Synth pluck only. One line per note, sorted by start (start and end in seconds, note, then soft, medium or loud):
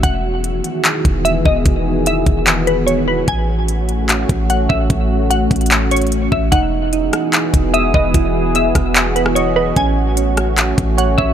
0.03 0.81 F#5 loud
1.25 1.44 E5 medium
1.46 1.65 D#5 medium
2.07 2.64 E5 medium
2.67 2.86 B4 medium
2.87 3.06 C#5 medium
3.08 3.27 B4 medium
3.28 4.05 G#5 loud
4.50 4.69 F#5 medium
4.69 4.89 E5 medium
5.30 5.88 F#5 medium
5.91 6.30 C#5 medium
6.32 6.51 E5 medium
6.52 7.29 F#5 loud
7.74 7.93 E5 medium
7.94 8.14 D#5 medium
8.56 9.12 E5 medium
9.16 9.35 B4 medium
9.35 9.55 C#5 medium
9.56 9.75 B4 medium
9.77 10.54 G#5 loud
10.98 11.17 F#5 medium
11.18 11.34 E5 medium